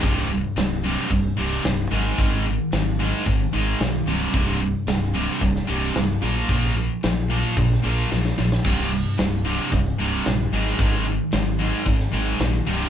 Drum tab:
CC |----------------|----------------|----------------|----------------|
HH |o---o---o---o---|o---o---o---o---|o---o---o---o---|o---o---o-------|
SD |----o-------o---|----o-------o---|----o----o--o---|----o----o--oooo|
BD |o-------o-------|o-------o-------|o-------o-------|o-------o-------|

CC |x---------------|----------------|
HH |o---o---o---o---|o---o---o---o---|
SD |----o-------o--o|----o----o--o---|
BD |o-------o-------|o-------o-------|